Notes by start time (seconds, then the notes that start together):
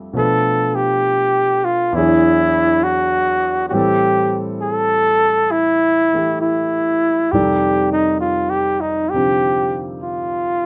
Already playing: F2 F3 G3 A3 C4 D4 G4 A4 E5
0.13 B2 F3 A3 D4 B4
0.18 A4
0.75 G4
1.64 F4
1.92 E2 E3 F#3 D4 E4
1.98 G#4
2.83 F#4
3.69 A2 E3 F#4 G4
3.74 G3 C4 A4
4.62 A4
5.51 E4
6.13 E3 A3 G4
6.41 E4
7.32 F2 C3 D#3 G3 G4 A4 D5
7.92 D#4
8.20 F4
8.50 G4
8.81 D#4
9.10 C3 D3 G4
9.15 F3 C4 G4
10.02 F4